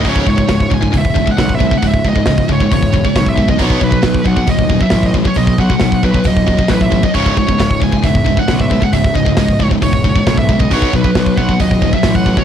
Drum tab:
HH |o---o---o---o---|o---o---o---o---|o---o---o---o---|o---o---o---o---|
SD |----o-------o---|----o-------o---|----o-------o---|----o-------o---|
BD |oooooooooooooooo|oooooooooooooooo|oooooooooooooooo|oooooooooooooooo|

HH |o---o---o---o---|o---o---o---o---|o---o---o---o---|
SD |----o-------o---|----o-------o---|----o-------o---|
BD |oooooooooooooooo|oooooooooooooooo|oooooooooooooooo|